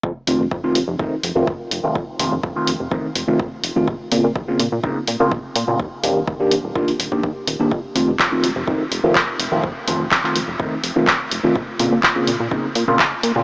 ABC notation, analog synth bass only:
X:1
M:4/4
L:1/16
Q:1/4=125
K:Fmix
V:1 name="Analog synth bass" clef=bass
F,, z F,,, F,,, F,, z F,,, F,,, F,, z F,,, F,,, F,, z F,,, F,,, | F,, z F,,, F,,, F,, z F,,, F,,, F,, z F,,, F,,, F,, z F,,, F,,, | B,,, z B,, B,, B,,, z B,, B,, B,,, z B,, B,, B,,, z B,, B,, | E,, z E,,, E,,, E,, z E,,, E,,, E,, z E,,, E,,, E,, z E,,, E,,, |
F,, z F,,, F,,, F,, z F,,, F,,, F,, z F,,, F,,, F,, z F,,, F,,, | F,, z F,,, F,,, F,, z F,,, F,,, F,, z F,,, F,,, F,, z F,,, F,,, | B,,, z B,, B,, B,,, z B,, B,, B,,, z B,, B,, B,,, z B,, B,, |]